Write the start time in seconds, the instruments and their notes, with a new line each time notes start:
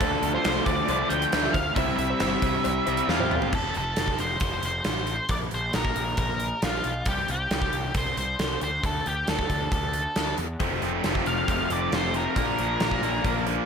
Already playing: overdriven electric guitar D3 F3 A3 D4, string machine A3 D4 F4 D5, grand piano F4 A4 D5, lead electric guitar A4
0.01 picked electric bass D2, kick, closed hi-hat, cowbell
0.23 picked electric bass D2, closed hi-hat
0.34 grand piano F4 A4 C5, lead electric guitar C5
0.45 picked electric bass C2, snare, closed hi-hat, cowbell
0.66 picked electric bass D2, lead electric guitar D5, kick, closed hi-hat, cowbell
0.88 picked electric bass C2, overdriven electric guitar D3 F3 A3 D4, closed hi-hat, cowbell
1.09 picked electric bass D2, overdriven electric guitar D3 F3 A3 D4, lead electric guitar G5, closed hi-hat, cowbell
1.22 closed hi-hat
1.32 picked electric bass D2, snare, closed hi-hat
1.43 grand piano F4 A4 E5
1.53 picked electric bass D2, lead electric guitar F5, kick, closed hi-hat, cowbell
1.75 picked electric bass C2, overdriven electric guitar C3 G3 C4 E4, string machine G3 C4 C5 E5, grand piano E4 G4 C5, lead electric guitar E5, kick, closed hi-hat, cowbell
1.97 picked electric bass C2, lead electric guitar E5, closed hi-hat
2.10 grand piano E4 G4 C5
2.20 picked electric bass G1, snare, closed hi-hat, cowbell
2.42 picked electric bass C2, kick, closed hi-hat, cowbell
2.64 picked electric bass C2, closed hi-hat, cowbell
2.86 picked electric bass C2, overdriven electric guitar C3 G3 C4 E4, closed hi-hat, cowbell
2.97 closed hi-hat
3.08 picked electric bass E2, overdriven electric guitar C3 G3 C4 E4, lead electric guitar F4, snare
3.20 grand piano E4 G4 C5, high tom
3.31 mid tom, cowbell
3.42 floor tom
3.53 picked electric bass F1, lead electric guitar A4, kick, crash
3.75 picked electric bass F1, lead electric guitar A4, closed hi-hat
3.96 picked electric bass F1, snare, closed hi-hat
4.08 kick
4.19 picked electric bass F1, lead electric guitar C5, closed hi-hat
4.40 picked electric bass F1, kick, closed hi-hat
4.63 picked electric bass F1, lead electric guitar C5, closed hi-hat
4.84 picked electric bass A1, snare, closed hi-hat
5.07 closed hi-hat
5.29 picked electric bass A#1, lead electric guitar D5, kick, closed hi-hat
5.51 picked electric bass A#1, lead electric guitar C5, closed hi-hat
5.73 picked electric bass A#1, lead electric guitar A#4, snare, closed hi-hat
5.85 kick
5.96 picked electric bass A#1, closed hi-hat
6.17 picked electric bass A#1, lead electric guitar A#4, kick, closed hi-hat
6.40 closed hi-hat
6.62 picked electric bass A#1, lead electric guitar F4, snare, closed hi-hat
6.84 picked electric bass B1, closed hi-hat
7.06 picked electric bass C2, lead electric guitar G4, kick, closed hi-hat
7.28 picked electric bass C2, lead electric guitar G4, closed hi-hat
7.51 picked electric bass C2, snare, closed hi-hat
7.62 kick
7.73 picked electric bass C2, closed hi-hat
7.94 picked electric bass C2, lead electric guitar C5, kick, closed hi-hat
8.17 picked electric bass C2, lead electric guitar C5, closed hi-hat
8.39 picked electric bass C2, snare, closed hi-hat
8.61 picked electric bass D2, lead electric guitar C5, closed hi-hat
8.84 picked electric bass D2, lead electric guitar A4, kick, closed hi-hat
9.06 picked electric bass D2, lead electric guitar G4, closed hi-hat
9.27 picked electric bass D2, lead electric guitar A4, snare, closed hi-hat
9.39 kick
9.50 picked electric bass D2, kick, closed hi-hat
9.72 picked electric bass D2, lead electric guitar A4, kick, closed hi-hat
9.93 closed hi-hat
10.16 picked electric bass D2, snare, closed hi-hat
10.38 picked electric bass E2, closed hi-hat
10.60 picked electric bass F1, overdriven electric guitar F2 C3 F3 A3 C4, string machine A3 C4 F4 C5, kick, closed hi-hat
10.81 picked electric bass F1, overdriven electric guitar F2 C3 F3 A3 C4, closed hi-hat
11.04 picked electric bass F1, overdriven electric guitar F2 C3 F3 A3 C4, snare, closed hi-hat
11.15 kick
11.26 picked electric bass F1, overdriven electric guitar F2 C3 F3 A3 C4, lead electric guitar F5, closed hi-hat
11.48 picked electric bass F1, overdriven electric guitar F2 C3 F3 A3 C4, lead electric guitar F5, kick, closed hi-hat
11.70 picked electric bass F1, overdriven electric guitar F2 C3 F3 A3 C4, lead electric guitar D5, closed hi-hat
11.92 picked electric bass F1, overdriven electric guitar F2 C3 F3 A3 C4, lead electric guitar C5, snare, closed hi-hat
12.14 overdriven electric guitar F2 C3 F3 A3 C4, lead electric guitar A#4, closed hi-hat
12.36 picked electric bass A#1, overdriven electric guitar A#2 F3 A#3 D4, string machine A#3 D4 F4 D5, kick, closed hi-hat
12.58 picked electric bass A#1, overdriven electric guitar A#2 F3 A#3 D4, closed hi-hat
12.80 picked electric bass A#1, overdriven electric guitar A#2 F3 A#3 D4, snare, closed hi-hat
12.91 kick
13.02 picked electric bass A#1, overdriven electric guitar A#2 F3 A#3 D4, closed hi-hat
13.24 picked electric bass A#1, overdriven electric guitar A#2 F3 A#3 D4, kick, closed hi-hat
13.46 overdriven electric guitar A#2 F3 A#3 D4, closed hi-hat